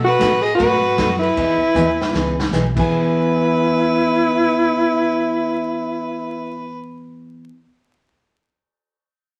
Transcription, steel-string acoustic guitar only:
0.19 0.31 B2 medium
0.19 0.31 F#3 medium
0.19 0.31 A3 medium
0.19 0.31 D#4 medium
0.19 0.31 F#4 medium
0.58 0.80 B2 medium
0.58 0.80 F#3 medium
0.58 0.80 A3 medium
0.58 0.80 D#4 medium
0.58 0.80 F#4 medium
0.97 1.08 B2 medium
0.97 1.09 F#3 medium
0.97 1.09 A3 medium
0.97 1.09 D#4 medium
0.97 1.09 F#4 medium
1.36 1.58 E3 soft
1.36 1.58 B3 medium
1.36 1.58 D#4 medium
1.36 1.58 G#4 medium
1.75 1.86 E3 medium
1.75 1.86 B3 medium
1.75 1.86 D#4 medium
1.75 1.86 G#4 medium
2.13 2.35 E3 medium
2.13 2.35 B3 medium
2.13 2.35 D#4 medium
2.13 2.35 G#4 medium
2.53 2.64 E3 medium
2.53 2.64 B3 medium
2.53 2.64 D#4 medium
2.53 2.64 G#4 medium
2.76 7.48 E3 medium
2.76 7.49 B3 medium
2.76 7.51 G#4 medium

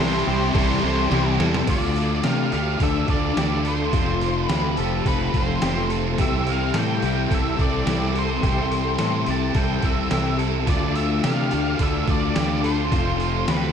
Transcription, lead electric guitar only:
0.00 0.53 C5 loud
0.54 1.35 C5 loud
1.70 2.24 D5 medium
2.25 2.52 F5 loud
2.53 2.82 F5 medium
2.83 3.10 E5 medium
3.10 3.67 D5 medium
3.67 4.43 C5 medium
4.43 4.78 B4 medium
4.78 5.07 A4 medium
5.07 5.36 B4 medium
5.38 5.88 C5 medium
6.21 6.49 E5 medium
6.50 6.77 F5 medium
6.79 7.35 G5 medium
7.34 7.61 E5 medium
7.62 8.13 D5 medium
8.19 9.33 C5 medium
9.30 9.57 A5 medium
9.58 9.85 G5 medium
9.85 10.37 E5 medium
10.70 10.96 D5 medium
10.96 11.24 E5 loud
11.25 11.82 F5 loud
11.83 12.10 E5 medium
12.11 12.67 D5 medium
12.65 13.49 C5 loud
13.50 13.72 B4 medium

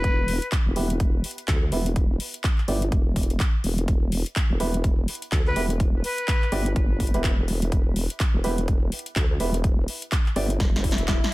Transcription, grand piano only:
0.76 0.87 B3 medium
0.76 0.87 E4 medium
0.76 0.87 G4 medium
0.76 0.87 B4 medium
1.72 1.83 B3 medium
1.72 1.83 E4 medium
1.72 1.83 G4 medium
1.72 1.83 B4 medium
2.68 2.79 B3 medium
2.68 2.79 E4 medium
2.68 2.79 G4 medium
2.68 2.79 D5 medium
4.60 4.71 B3 medium
4.60 4.71 E4 medium
4.60 4.71 G4 medium
4.60 4.71 B4 medium
5.56 5.67 B3 medium
5.56 5.67 E4 medium
5.56 5.67 G4 medium
5.56 5.67 B4 medium
6.52 6.63 B3 medium
6.52 6.63 E4 medium
6.52 6.63 G4 medium
6.52 6.63 D5 loud
7.14 7.28 B3 medium
7.14 7.28 E4 medium
7.14 7.28 G4 medium
7.14 7.28 B4 loud
8.44 8.55 B3 medium
8.44 8.55 E4 medium
8.44 8.55 G4 medium
8.44 8.55 B4 medium
9.40 9.51 B3 medium
9.40 9.51 E4 medium
9.40 9.51 G4 medium
9.40 9.51 B4 medium
10.36 10.47 B3 medium
10.36 10.47 E4 medium
10.36 10.47 G4 medium
10.36 10.47 D5 loud

